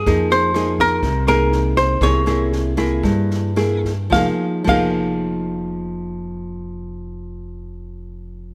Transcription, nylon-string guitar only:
\new Staff \with { instrumentName = "Nylon-string guitar" } { \time 4/4 \key f \minor \tempo 4 = 108 << { <bes ees' aes'>4 <bes ees' aes'>4 r8 <bes ees' aes'>4. | <bes e' aes'>8 <bes e' aes'>4 <bes e' aes'>4. <bes e' aes'>8 r8 | <f bes ees' aes'>8 r8 <f bes ees' aes'>2.~ | <f bes ees' aes'>1 | } \\ { f2 c2 | c2 g,2 | r1 | r1 | } >> }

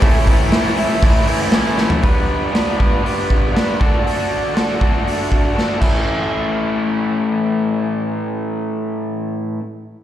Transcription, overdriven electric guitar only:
\new Staff \with { instrumentName = "Overdriven electric guitar" } { \time 4/4 \key a \mixolydian \tempo 4 = 119 <a, e a cis' e'>8 <a, e a cis' e'>8 <a, e a cis' e'>8 <a, e a cis' e'>8 <a, e a cis' e'>8 <a, e a cis' e'>8 <a, e a cis' e'>8 <a, e a cis' e'>8 | <g b d' b'>4 <g b d' b'>8 <g b d' b'>8 <g b d' b'>4 <g b d' b'>8 <d d' fis' a'>8 | <d d' fis' a'>4 <d d' fis' a'>8 <d d' fis' a'>8 <d d' fis' a'>4 <d d' fis' a'>8 <a, e a cis' e'>8~ | <a, e a cis' e'>1~ |
<a, e a cis' e'>1 | }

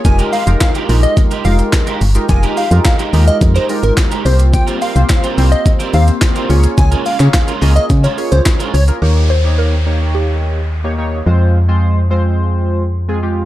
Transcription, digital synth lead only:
\new Staff \with { instrumentName = "Digital synth lead" } { \time 4/4 \key f \minor \tempo 4 = 107 aes''8 f''8 f''16 r8 ees''8 r16 f''16 r4 r16 | aes''8 f''8 f''16 r8 ees''16 r16 c''16 r16 bes'16 r8 c''16 r16 | g''8 f''8 f''16 r8 ees''8 r16 f''16 r4 r16 | aes''8 f''8 f''16 r8 ees''16 r16 des''16 r16 c''16 r8 des''16 r16 |
r1 | r1 | }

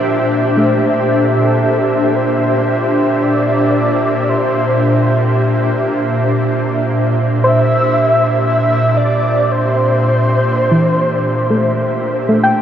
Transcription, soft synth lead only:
\new Staff \with { instrumentName = "Soft synth lead" } { \time 3/4 \key a \phrygian \tempo 4 = 57 r4 a'4 c''4 | d''4 c''4. r8 | r4 e''4 e''8 d''8 | c''2~ c''8 r8 | }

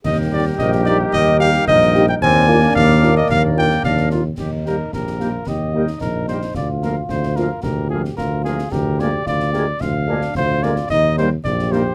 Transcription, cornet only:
\new Staff \with { instrumentName = "Cornet" } { \time 2/4 \key ees \major \tempo 4 = 110 ees''8 d''8 ees''8 d''8 | ees''8 f''8 ees''8. g''16 | aes''4 f''8. ees''16 | f''8 g''8 f''8 f'8 |
g'8 bes'8 bes'4 | ees''4 bes'8 c''8 | d''8 bes'8 c''8 bes'8 | bes'8 aes'8 bes'8 aes'8 |
bes'8 d''8 d''4 | f''4 c''8 d''8 | ees''8 c''8 d''8 c''8 | }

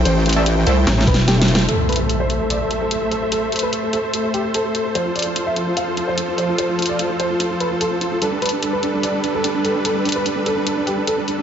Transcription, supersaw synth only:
\new Staff \with { instrumentName = "Supersaw synth" } { \time 4/4 \key a \minor \tempo 4 = 147 << { <a a' g''>1 | <a a' e''>1~ | <a a' e''>1 | <f f'>1~ |
<f f'>1 | <g d' b'>1~ | <g d' b'>1 | } \\ { c''1 | c''1~ | c''1~ | c''1~ |
c''1 | r1 | r1 | } >> }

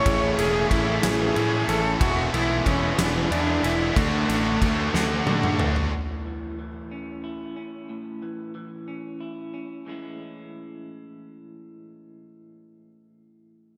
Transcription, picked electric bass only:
\new Staff \with { instrumentName = "Picked electric bass" } { \clef bass \time 6/8 \key a \major \tempo 4. = 61 a,,8 e,,8 a,,8 a,,8 a,8 a,,8 | e,,8 b,,8 e,,8 e,,8 e,8 e,,8 | d,8 a,,8 d,8 d,8 d8 d,8 | r2. |
r2. | r2. | r2. | }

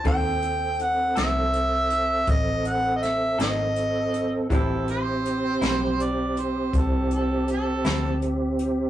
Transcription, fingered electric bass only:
\new Staff \with { instrumentName = "Fingered electric bass" } { \clef bass \time 12/8 \key a \minor \tempo 4. = 54 dis,4. bis,,4. a,,4. gis,,4. | a,,4. b,,4. c,4. d,4. | }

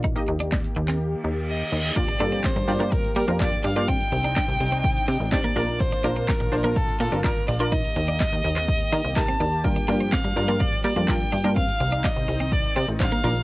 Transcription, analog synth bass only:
\new Staff \with { instrumentName = "Analog synth bass" } { \clef bass \time 4/4 \key g \minor \tempo 4 = 125 bes,,8 ees,4 ees,4 ees,4 ees,8 | r8 g,8. g,16 g,4 g16 f,8. g,8~ | g,8 c,8. c,16 c,4 c16 a,,8. bes,,8~ | bes,,8 bes,,8. bes,,16 bes,,4 bes,16 g,,8. bes,,8~ |
bes,,8 ees,8. ees,16 ees,4 ees16 c,8. ees,8~ | ees,8 g,8. g,16 g,4 g16 f,8. g,8~ | g,8 c,8. c,16 c,4 c16 a,,8. bes,,8 | }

